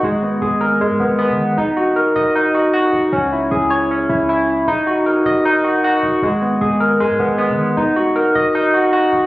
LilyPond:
<<
  \new Staff \with { instrumentName = "Tine electric piano" } { \time 4/4 \key ees \phrygian \tempo 4 = 155 aes8 ces'8 aes'8 bes'8 aes8 ces'8 ces'4 | ees'8 ges'8 bes'8 ees''8 ees'8 ges'8 ges'4 | des'8 fes'8 aes'8 des''8 des'8 fes'8 fes'4 | ees'8 ges'8 bes'8 ees''8 ees'8 ges'8 ges'4 |
aes8 ces'8 aes'8 bes'8 aes8 ces'8 ces'4 | ees'8 ges'8 bes'8 ees''8 ees'8 ges'8 ges'4 | }
  \new Staff \with { instrumentName = "808-style bass" } { \clef bass \time 4/4 \key ees \phrygian aes,,4 aes,,4 aes,8 aes,,8. ees8. | ees,,4. ees,,2 des,,8 | des,4 des,4. des,4. | ees,,4. ees,,2 ees,,8 |
aes,,4 aes,,4 aes,8 aes,,8. ees8. | ees,,4. ees,,2 des,,8 | }
>>